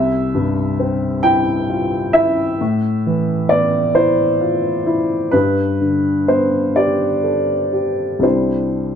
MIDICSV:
0, 0, Header, 1, 2, 480
1, 0, Start_track
1, 0, Key_signature, 0, "major"
1, 0, Tempo, 888889
1, 911, Tempo, 913242
1, 1389, Time_signature, 6, 3, 24, 8
1, 2831, Tempo, 952381
1, 3791, Tempo, 1016949
1, 4597, End_track
2, 0, Start_track
2, 0, Title_t, "Upright piano"
2, 0, Program_c, 0, 0
2, 0, Note_on_c, 0, 36, 54
2, 0, Note_on_c, 0, 76, 78
2, 44, Control_c, 0, 64, 127
2, 187, Note_on_c, 0, 43, 44
2, 430, Note_on_c, 0, 60, 43
2, 572, Note_off_c, 0, 43, 0
2, 664, Note_off_c, 0, 76, 0
2, 664, Note_on_c, 0, 79, 81
2, 668, Note_on_c, 0, 64, 46
2, 814, Note_off_c, 0, 60, 0
2, 916, Note_on_c, 0, 65, 37
2, 1052, Note_off_c, 0, 64, 0
2, 1145, Note_off_c, 0, 79, 0
2, 1146, Note_on_c, 0, 76, 79
2, 1149, Note_on_c, 0, 64, 49
2, 1151, Note_off_c, 0, 65, 0
2, 1366, Note_off_c, 0, 36, 0
2, 1390, Note_off_c, 0, 64, 0
2, 1396, Note_on_c, 0, 45, 55
2, 1398, Control_c, 0, 64, 0
2, 1479, Control_c, 0, 64, 127
2, 1636, Note_on_c, 0, 52, 42
2, 1860, Note_on_c, 0, 74, 78
2, 1862, Note_off_c, 0, 76, 0
2, 1866, Note_on_c, 0, 59, 44
2, 2009, Note_off_c, 0, 52, 0
2, 2099, Note_off_c, 0, 74, 0
2, 2100, Note_on_c, 0, 72, 75
2, 2104, Note_on_c, 0, 64, 45
2, 2246, Note_off_c, 0, 59, 0
2, 2342, Note_on_c, 0, 65, 39
2, 2487, Note_off_c, 0, 64, 0
2, 2581, Note_on_c, 0, 64, 48
2, 2583, Note_off_c, 0, 65, 0
2, 2811, Note_off_c, 0, 45, 0
2, 2818, Note_on_c, 0, 71, 73
2, 2825, Note_on_c, 0, 43, 53
2, 2828, Note_off_c, 0, 64, 0
2, 2828, Note_off_c, 0, 72, 0
2, 2837, Control_c, 0, 64, 0
2, 2936, Control_c, 0, 64, 127
2, 3067, Note_on_c, 0, 50, 39
2, 3307, Note_on_c, 0, 72, 64
2, 3308, Note_off_c, 0, 71, 0
2, 3310, Note_on_c, 0, 59, 38
2, 3454, Note_off_c, 0, 50, 0
2, 3546, Note_on_c, 0, 74, 64
2, 3548, Note_off_c, 0, 72, 0
2, 3549, Note_on_c, 0, 67, 39
2, 3692, Note_off_c, 0, 59, 0
2, 3788, Note_on_c, 0, 69, 32
2, 3927, Note_off_c, 0, 67, 0
2, 4019, Note_on_c, 0, 67, 37
2, 4020, Note_off_c, 0, 69, 0
2, 4237, Note_on_c, 0, 36, 38
2, 4242, Note_off_c, 0, 43, 0
2, 4244, Note_on_c, 0, 55, 32
2, 4249, Note_on_c, 0, 62, 31
2, 4255, Note_on_c, 0, 64, 31
2, 4256, Note_on_c, 0, 72, 52
2, 4260, Note_off_c, 0, 74, 0
2, 4261, Note_off_c, 0, 67, 0
2, 4270, Control_c, 0, 64, 0
2, 4377, Control_c, 0, 64, 127
2, 4597, Note_off_c, 0, 36, 0
2, 4597, Note_off_c, 0, 55, 0
2, 4597, Note_off_c, 0, 62, 0
2, 4597, Note_off_c, 0, 64, 0
2, 4597, Note_off_c, 0, 72, 0
2, 4597, End_track
0, 0, End_of_file